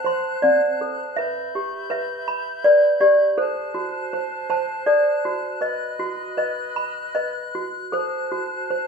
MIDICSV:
0, 0, Header, 1, 3, 480
1, 0, Start_track
1, 0, Tempo, 741656
1, 769, Time_signature, 3, 2, 24, 8
1, 3638, Tempo, 769231
1, 5668, End_track
2, 0, Start_track
2, 0, Title_t, "Flute section"
2, 0, Program_c, 0, 73
2, 0, Note_on_c, 0, 72, 64
2, 0, Note_on_c, 0, 81, 57
2, 0, Note_on_c, 0, 90, 72
2, 753, Note_off_c, 0, 81, 0
2, 754, Note_off_c, 0, 72, 0
2, 755, Note_off_c, 0, 90, 0
2, 768, Note_on_c, 0, 91, 76
2, 769, Note_on_c, 0, 76, 68
2, 771, Note_on_c, 0, 83, 62
2, 2175, Note_off_c, 0, 91, 0
2, 2176, Note_off_c, 0, 76, 0
2, 2176, Note_off_c, 0, 83, 0
2, 2192, Note_on_c, 0, 72, 73
2, 2192, Note_on_c, 0, 90, 82
2, 2193, Note_on_c, 0, 81, 71
2, 3626, Note_off_c, 0, 72, 0
2, 3627, Note_off_c, 0, 81, 0
2, 3640, Note_on_c, 0, 75, 69
2, 3641, Note_on_c, 0, 83, 62
2, 4907, Note_off_c, 0, 75, 0
2, 4947, Note_off_c, 0, 83, 0
2, 5094, Note_on_c, 0, 72, 61
2, 5094, Note_on_c, 0, 81, 55
2, 5668, Note_off_c, 0, 72, 0
2, 5668, Note_off_c, 0, 81, 0
2, 5668, Note_off_c, 0, 90, 0
2, 5668, End_track
3, 0, Start_track
3, 0, Title_t, "Toy piano"
3, 0, Program_c, 1, 8
3, 0, Note_on_c, 1, 60, 67
3, 0, Note_on_c, 1, 69, 69
3, 0, Note_on_c, 1, 78, 78
3, 29, Note_on_c, 1, 72, 79
3, 40, Note_on_c, 1, 84, 76
3, 274, Note_off_c, 1, 60, 0
3, 274, Note_on_c, 1, 74, 88
3, 281, Note_on_c, 1, 60, 72
3, 287, Note_off_c, 1, 72, 0
3, 518, Note_off_c, 1, 69, 0
3, 525, Note_on_c, 1, 69, 66
3, 738, Note_off_c, 1, 74, 0
3, 754, Note_on_c, 1, 76, 95
3, 766, Note_on_c, 1, 71, 77
3, 768, Note_off_c, 1, 60, 0
3, 768, Note_off_c, 1, 69, 0
3, 770, Note_off_c, 1, 78, 0
3, 770, Note_off_c, 1, 84, 0
3, 1005, Note_on_c, 1, 67, 65
3, 1229, Note_off_c, 1, 76, 0
3, 1230, Note_off_c, 1, 71, 0
3, 1230, Note_on_c, 1, 71, 90
3, 1236, Note_on_c, 1, 76, 76
3, 1474, Note_on_c, 1, 83, 80
3, 1681, Note_off_c, 1, 71, 0
3, 1711, Note_on_c, 1, 74, 94
3, 1718, Note_on_c, 1, 71, 80
3, 1937, Note_off_c, 1, 74, 0
3, 1940, Note_off_c, 1, 67, 0
3, 1945, Note_on_c, 1, 74, 96
3, 1947, Note_on_c, 1, 67, 72
3, 2170, Note_off_c, 1, 74, 0
3, 2185, Note_on_c, 1, 69, 79
3, 2186, Note_off_c, 1, 76, 0
3, 2187, Note_on_c, 1, 72, 91
3, 2188, Note_off_c, 1, 67, 0
3, 2188, Note_off_c, 1, 83, 0
3, 2192, Note_off_c, 1, 71, 0
3, 2424, Note_on_c, 1, 66, 74
3, 2667, Note_off_c, 1, 72, 0
3, 2674, Note_on_c, 1, 72, 80
3, 2903, Note_off_c, 1, 72, 0
3, 2910, Note_on_c, 1, 72, 88
3, 2914, Note_on_c, 1, 81, 85
3, 3142, Note_off_c, 1, 69, 0
3, 3148, Note_on_c, 1, 74, 93
3, 3149, Note_on_c, 1, 69, 73
3, 3161, Note_off_c, 1, 72, 0
3, 3391, Note_off_c, 1, 66, 0
3, 3399, Note_on_c, 1, 66, 68
3, 3610, Note_off_c, 1, 74, 0
3, 3631, Note_on_c, 1, 71, 73
3, 3636, Note_on_c, 1, 75, 85
3, 3637, Note_off_c, 1, 69, 0
3, 3640, Note_off_c, 1, 66, 0
3, 3640, Note_off_c, 1, 81, 0
3, 3871, Note_on_c, 1, 66, 73
3, 4104, Note_off_c, 1, 75, 0
3, 4107, Note_off_c, 1, 71, 0
3, 4107, Note_on_c, 1, 71, 78
3, 4111, Note_on_c, 1, 75, 78
3, 4350, Note_on_c, 1, 83, 79
3, 4583, Note_off_c, 1, 75, 0
3, 4590, Note_on_c, 1, 75, 78
3, 4595, Note_off_c, 1, 71, 0
3, 4595, Note_on_c, 1, 71, 72
3, 4833, Note_off_c, 1, 66, 0
3, 4841, Note_on_c, 1, 66, 67
3, 5074, Note_on_c, 1, 69, 78
3, 5081, Note_off_c, 1, 71, 0
3, 5081, Note_off_c, 1, 83, 0
3, 5081, Note_on_c, 1, 72, 78
3, 5082, Note_off_c, 1, 66, 0
3, 5094, Note_off_c, 1, 75, 0
3, 5319, Note_on_c, 1, 66, 70
3, 5555, Note_off_c, 1, 72, 0
3, 5562, Note_on_c, 1, 72, 73
3, 5668, Note_off_c, 1, 66, 0
3, 5668, Note_off_c, 1, 69, 0
3, 5668, Note_off_c, 1, 72, 0
3, 5668, End_track
0, 0, End_of_file